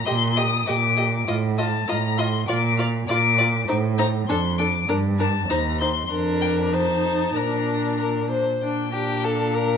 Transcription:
0.06 A#2 G4 D#5 C6
0.36 G4 D#5 D#6
0.66 A#2 G4 D#5 D6
0.97 G4 D#5
1.28 A2 F4 D#5
1.58 F4 D#5 A5
1.88 A2 F4 D#5 A#5
2.18 F4 D#5 C6
2.48 A#2 F4 D5 D6
2.78 F4 D5 F6
3.08 A#2 F4 D5 D6
3.38 F4 D5
3.68 A2 D#4 C5
3.98 D#4 C5 A#5
4.28 F2 D4 A4 C6
4.58 D4 A4 D6
4.89 G2 D4 A#4
5.19 D4 A#4 A5
5.50 D#2 D#4 C5 A#5
5.80 D#4 C5 C6
6.10 F2 D4 A#4
6.41 G5
6.73 D#4 C5 A5
7.35 A#2 D4 A#4 A#5
7.99 A#4
8.30 C5
8.62 A#2 D4 G5
8.93 D4 G4
9.24 A4 F5
9.54 A#4

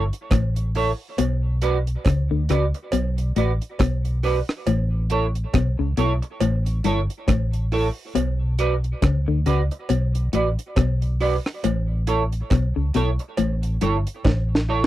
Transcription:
Already playing: G1
0.13 closed hi-hat
0.31 A1 A2, kick, cross-stick, closed hi-hat, cowbell
0.56 closed hi-hat
0.75 E4 A4 C#5, open hi-hat
1.18 B1 B2, closed hi-hat, cowbell
1.62 F#4 B4 D5, closed hi-hat
1.87 closed hi-hat
2.05 C#2 C#3, kick, cross-stick, closed hi-hat, cowbell
2.31 D2 D3
2.49 C#2 C#3 F#4 B4 D5, cross-stick, closed hi-hat
2.74 muted clean electric guitar stroke, closed hi-hat
2.92 B1 B2, closed hi-hat, cowbell
3.18 closed hi-hat
3.36 A1 A2 F#4 B4 D5, closed hi-hat
3.62 closed hi-hat
3.79 B1 B2, kick, cross-stick, closed hi-hat, cowbell
4.05 closed hi-hat
4.23 F#4 B4 D5, open hi-hat
4.49 cross-stick
4.67 A1 A2, closed hi-hat, cowbell
5.10 E4 A4 C#5, closed hi-hat
5.35 closed hi-hat
5.54 B1 B2, kick, cross-stick, closed hi-hat, cowbell
5.79 C#2 C#3
5.97 B1 B2 E4 A4 C#5, closed hi-hat
6.22 muted clean electric guitar stroke, closed hi-hat
6.40 A1 A2, closed hi-hat, cowbell
6.66 closed hi-hat
6.84 G1 G2 E4 A4 C#5, closed hi-hat
7.10 closed hi-hat
7.28 A1 A2, kick, cross-stick, closed hi-hat, cowbell
7.53 closed hi-hat
7.72 E4 A4 C#5, open hi-hat
8.15 B1 B2, closed hi-hat, cowbell
8.59 F#4 B4 D5, closed hi-hat
8.84 closed hi-hat
9.02 C#2 C#3, kick, cross-stick, closed hi-hat, cowbell
9.28 D2 D3
9.46 C#2 C#3 F#4 B4 D5, closed hi-hat
9.71 muted clean electric guitar stroke, closed hi-hat
9.89 B1 B2, closed hi-hat, cowbell
10.15 closed hi-hat
10.33 A1 A2 F#4 B4 D5, closed hi-hat
10.59 closed hi-hat
10.76 B1 B2, kick, cross-stick, closed hi-hat, cowbell
11.02 closed hi-hat
11.20 F#4 B4 D5, open hi-hat
11.46 cross-stick
11.64 A1 A2, closed hi-hat, cowbell
12.07 E4 A4 C#5, closed hi-hat
12.32 closed hi-hat
12.50 B1 B2, kick, cross-stick, closed hi-hat, cowbell
12.76 C#2 C#3
12.94 B1 B2 E4 A4 C#5, cross-stick, closed hi-hat
13.19 muted clean electric guitar stroke, closed hi-hat
13.37 A1 A2, closed hi-hat, cowbell
13.63 closed hi-hat
13.81 G1 G2 E4 A4 C#5, closed hi-hat
14.07 closed hi-hat
14.25 A1 A2, kick, snare, cowbell
14.55 snare
14.69 E4 A4 C#5

